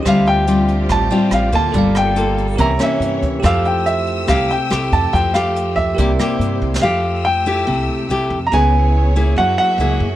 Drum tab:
HH |x--x--x--x--x--x--x--x--|x--x--x--x--x--x--x--x--|x--x--x--x--x--x--x--x--|x--x--x--x--x--x--x-----|
SD |r-----------r-----r-----|---r-----------r--------|r-----------r-----r-----|---r-----------r-------o|
BD |o-----------o--------o--|o-----------o--------o--|o-----------o--------o--|o--------o--o--------o--|

HH |------------------------|------------------------|
SD |------------------------|------------------------|
BD |------------------------|------------------------|